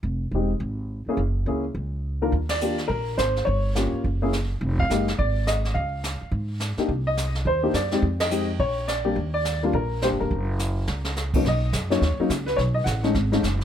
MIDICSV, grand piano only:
0, 0, Header, 1, 2, 480
1, 0, Start_track
1, 0, Key_signature, -3, "major"
1, 0, Tempo, 284765
1, 72, Time_signature, 4, 2, 24, 8
1, 22993, End_track
2, 0, Start_track
2, 0, Title_t, "Grand piano"
2, 0, Program_c, 0, 0
2, 584, Note_on_c, 0, 60, 43
2, 584, Note_on_c, 0, 63, 42
2, 585, Note_on_c, 0, 56, 50
2, 591, Note_on_c, 0, 67, 53
2, 835, Note_off_c, 0, 56, 0
2, 835, Note_off_c, 0, 60, 0
2, 835, Note_off_c, 0, 63, 0
2, 838, Note_off_c, 0, 67, 0
2, 1830, Note_on_c, 0, 61, 57
2, 1831, Note_on_c, 0, 58, 60
2, 1834, Note_on_c, 0, 64, 55
2, 1839, Note_on_c, 0, 68, 63
2, 1990, Note_off_c, 0, 58, 0
2, 1990, Note_off_c, 0, 61, 0
2, 1992, Note_off_c, 0, 64, 0
2, 1994, Note_off_c, 0, 68, 0
2, 2479, Note_on_c, 0, 58, 50
2, 2486, Note_on_c, 0, 61, 50
2, 2486, Note_on_c, 0, 64, 46
2, 2491, Note_on_c, 0, 68, 56
2, 2746, Note_off_c, 0, 58, 0
2, 2749, Note_off_c, 0, 61, 0
2, 2750, Note_off_c, 0, 64, 0
2, 2752, Note_off_c, 0, 68, 0
2, 3735, Note_on_c, 0, 51, 59
2, 3738, Note_on_c, 0, 62, 57
2, 3743, Note_on_c, 0, 58, 55
2, 3744, Note_on_c, 0, 65, 52
2, 3746, Note_on_c, 0, 70, 69
2, 3906, Note_off_c, 0, 51, 0
2, 3907, Note_off_c, 0, 62, 0
2, 3910, Note_off_c, 0, 58, 0
2, 3910, Note_off_c, 0, 65, 0
2, 3912, Note_off_c, 0, 70, 0
2, 4212, Note_on_c, 0, 74, 92
2, 4408, Note_on_c, 0, 58, 51
2, 4412, Note_on_c, 0, 62, 50
2, 4417, Note_on_c, 0, 65, 46
2, 4420, Note_on_c, 0, 67, 56
2, 4665, Note_off_c, 0, 74, 0
2, 4674, Note_off_c, 0, 58, 0
2, 4676, Note_off_c, 0, 62, 0
2, 4678, Note_off_c, 0, 65, 0
2, 4680, Note_off_c, 0, 67, 0
2, 4849, Note_on_c, 0, 70, 83
2, 5316, Note_off_c, 0, 70, 0
2, 5354, Note_on_c, 0, 72, 84
2, 5811, Note_off_c, 0, 72, 0
2, 5815, Note_on_c, 0, 73, 81
2, 6325, Note_on_c, 0, 58, 51
2, 6338, Note_on_c, 0, 61, 47
2, 6344, Note_on_c, 0, 65, 46
2, 6344, Note_on_c, 0, 67, 54
2, 6730, Note_off_c, 0, 73, 0
2, 6812, Note_off_c, 0, 58, 0
2, 6818, Note_off_c, 0, 61, 0
2, 6821, Note_off_c, 0, 65, 0
2, 6821, Note_off_c, 0, 67, 0
2, 7114, Note_on_c, 0, 61, 57
2, 7116, Note_on_c, 0, 58, 63
2, 7117, Note_on_c, 0, 64, 57
2, 7126, Note_on_c, 0, 68, 68
2, 7281, Note_off_c, 0, 61, 0
2, 7282, Note_off_c, 0, 58, 0
2, 7282, Note_off_c, 0, 64, 0
2, 7287, Note_off_c, 0, 68, 0
2, 8084, Note_on_c, 0, 77, 96
2, 8272, Note_on_c, 0, 56, 59
2, 8277, Note_on_c, 0, 58, 50
2, 8277, Note_on_c, 0, 67, 60
2, 8285, Note_on_c, 0, 63, 52
2, 8526, Note_off_c, 0, 77, 0
2, 8531, Note_off_c, 0, 56, 0
2, 8533, Note_off_c, 0, 58, 0
2, 8534, Note_off_c, 0, 67, 0
2, 8537, Note_off_c, 0, 63, 0
2, 8740, Note_on_c, 0, 74, 89
2, 9188, Note_off_c, 0, 74, 0
2, 9223, Note_on_c, 0, 75, 82
2, 9681, Note_on_c, 0, 77, 82
2, 9718, Note_off_c, 0, 75, 0
2, 10585, Note_off_c, 0, 77, 0
2, 11432, Note_on_c, 0, 62, 52
2, 11433, Note_on_c, 0, 58, 53
2, 11441, Note_on_c, 0, 63, 52
2, 11448, Note_on_c, 0, 67, 63
2, 11602, Note_off_c, 0, 62, 0
2, 11603, Note_off_c, 0, 58, 0
2, 11607, Note_off_c, 0, 63, 0
2, 11610, Note_off_c, 0, 67, 0
2, 11917, Note_on_c, 0, 75, 92
2, 12364, Note_off_c, 0, 75, 0
2, 12592, Note_on_c, 0, 72, 88
2, 12861, Note_on_c, 0, 58, 56
2, 12868, Note_on_c, 0, 62, 53
2, 12870, Note_on_c, 0, 67, 65
2, 12875, Note_on_c, 0, 63, 59
2, 13036, Note_off_c, 0, 58, 0
2, 13040, Note_off_c, 0, 62, 0
2, 13041, Note_off_c, 0, 67, 0
2, 13044, Note_off_c, 0, 63, 0
2, 13060, Note_on_c, 0, 74, 88
2, 13082, Note_off_c, 0, 72, 0
2, 13342, Note_on_c, 0, 60, 52
2, 13343, Note_on_c, 0, 56, 61
2, 13352, Note_on_c, 0, 63, 52
2, 13359, Note_on_c, 0, 67, 64
2, 13507, Note_off_c, 0, 74, 0
2, 13516, Note_off_c, 0, 60, 0
2, 13517, Note_off_c, 0, 56, 0
2, 13522, Note_off_c, 0, 63, 0
2, 13525, Note_off_c, 0, 67, 0
2, 13829, Note_on_c, 0, 75, 86
2, 14003, Note_on_c, 0, 56, 49
2, 14003, Note_on_c, 0, 60, 43
2, 14004, Note_on_c, 0, 63, 44
2, 14010, Note_on_c, 0, 67, 52
2, 14277, Note_off_c, 0, 56, 0
2, 14277, Note_off_c, 0, 60, 0
2, 14277, Note_off_c, 0, 63, 0
2, 14278, Note_off_c, 0, 75, 0
2, 14280, Note_off_c, 0, 67, 0
2, 14491, Note_on_c, 0, 73, 93
2, 14941, Note_off_c, 0, 73, 0
2, 14964, Note_on_c, 0, 74, 84
2, 15246, Note_on_c, 0, 55, 59
2, 15252, Note_on_c, 0, 67, 68
2, 15253, Note_on_c, 0, 58, 55
2, 15257, Note_on_c, 0, 62, 52
2, 15418, Note_off_c, 0, 74, 0
2, 15427, Note_off_c, 0, 55, 0
2, 15430, Note_off_c, 0, 67, 0
2, 15431, Note_off_c, 0, 58, 0
2, 15433, Note_off_c, 0, 62, 0
2, 15742, Note_on_c, 0, 74, 91
2, 16193, Note_off_c, 0, 74, 0
2, 16234, Note_on_c, 0, 58, 61
2, 16238, Note_on_c, 0, 62, 65
2, 16240, Note_on_c, 0, 55, 66
2, 16247, Note_on_c, 0, 65, 71
2, 16400, Note_off_c, 0, 58, 0
2, 16402, Note_off_c, 0, 62, 0
2, 16403, Note_off_c, 0, 55, 0
2, 16407, Note_off_c, 0, 65, 0
2, 16426, Note_on_c, 0, 70, 77
2, 16868, Note_off_c, 0, 70, 0
2, 16899, Note_on_c, 0, 72, 79
2, 16913, Note_on_c, 0, 55, 58
2, 16914, Note_on_c, 0, 58, 51
2, 16925, Note_on_c, 0, 67, 61
2, 16926, Note_on_c, 0, 62, 52
2, 16983, Note_off_c, 0, 72, 0
2, 17195, Note_on_c, 0, 70, 72
2, 17384, Note_off_c, 0, 55, 0
2, 17384, Note_off_c, 0, 58, 0
2, 17390, Note_off_c, 0, 67, 0
2, 17391, Note_off_c, 0, 62, 0
2, 18746, Note_off_c, 0, 70, 0
2, 19130, Note_on_c, 0, 47, 59
2, 19135, Note_on_c, 0, 58, 54
2, 19137, Note_on_c, 0, 61, 57
2, 19138, Note_on_c, 0, 54, 56
2, 19143, Note_on_c, 0, 63, 64
2, 19284, Note_off_c, 0, 47, 0
2, 19286, Note_off_c, 0, 58, 0
2, 19287, Note_off_c, 0, 61, 0
2, 19288, Note_off_c, 0, 54, 0
2, 19290, Note_off_c, 0, 63, 0
2, 19352, Note_on_c, 0, 75, 92
2, 19767, Note_off_c, 0, 75, 0
2, 20064, Note_on_c, 0, 54, 65
2, 20065, Note_on_c, 0, 58, 61
2, 20071, Note_on_c, 0, 61, 58
2, 20082, Note_on_c, 0, 63, 75
2, 20086, Note_on_c, 0, 73, 86
2, 20229, Note_off_c, 0, 54, 0
2, 20229, Note_off_c, 0, 58, 0
2, 20232, Note_off_c, 0, 61, 0
2, 20238, Note_off_c, 0, 63, 0
2, 20557, Note_on_c, 0, 54, 71
2, 20563, Note_on_c, 0, 58, 61
2, 20567, Note_on_c, 0, 61, 62
2, 20570, Note_on_c, 0, 63, 72
2, 20690, Note_off_c, 0, 73, 0
2, 20714, Note_off_c, 0, 54, 0
2, 20717, Note_off_c, 0, 58, 0
2, 20719, Note_off_c, 0, 61, 0
2, 20721, Note_off_c, 0, 63, 0
2, 21009, Note_on_c, 0, 71, 84
2, 21179, Note_on_c, 0, 73, 92
2, 21203, Note_off_c, 0, 71, 0
2, 21263, Note_off_c, 0, 73, 0
2, 21482, Note_on_c, 0, 75, 82
2, 21646, Note_on_c, 0, 78, 81
2, 21660, Note_off_c, 0, 75, 0
2, 21967, Note_on_c, 0, 57, 58
2, 21971, Note_on_c, 0, 56, 65
2, 21977, Note_on_c, 0, 61, 54
2, 21979, Note_on_c, 0, 63, 70
2, 22105, Note_off_c, 0, 78, 0
2, 22135, Note_off_c, 0, 57, 0
2, 22137, Note_off_c, 0, 56, 0
2, 22141, Note_off_c, 0, 61, 0
2, 22141, Note_off_c, 0, 63, 0
2, 22451, Note_on_c, 0, 56, 67
2, 22453, Note_on_c, 0, 57, 64
2, 22454, Note_on_c, 0, 63, 77
2, 22455, Note_on_c, 0, 61, 58
2, 22616, Note_off_c, 0, 56, 0
2, 22617, Note_off_c, 0, 57, 0
2, 22618, Note_off_c, 0, 61, 0
2, 22618, Note_off_c, 0, 63, 0
2, 22993, End_track
0, 0, End_of_file